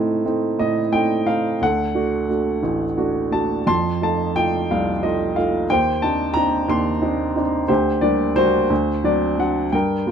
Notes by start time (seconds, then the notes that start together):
Already playing: A2 A3 C4 D#4
0.25 A3 C4 D#4
0.59 A2 D#5
0.92 A3 C4 D#4 G5
1.27 A3 C4 D#4 F5
1.61 D2 A4 F#5
1.95 A3 D4 F#4
2.29 A3 D4 F#4
2.63 A1
2.97 A3 D4 F#4
3.31 A3 D4 F#4 A5
3.67 F2 A5 C6
4.01 A3 D#4 F4 A5
4.36 A3 D#4 F4 G5
4.71 C2 F5
5.03 A3 D#4 F4 D#5
5.36 A3 D#4 F4 F5
5.70 D#2 C5 G5
6.02 C4 D4 D#4 A5
6.34 C4 D4 D#4 A#5
6.68 D#2 C6
7.02 C4 D4 D#4
7.36 C4 D4 D#4
7.68 D2 G4 C5
8.01 G3 A#3 D4 D5
8.36 G3 A#3 D4 F#4 C5
8.70 D2
9.04 F#3 C4 D4 D5
9.38 F#3 C4 D4 F#5
9.72 G2 A#4 G5
10.06 G3 A#3 F4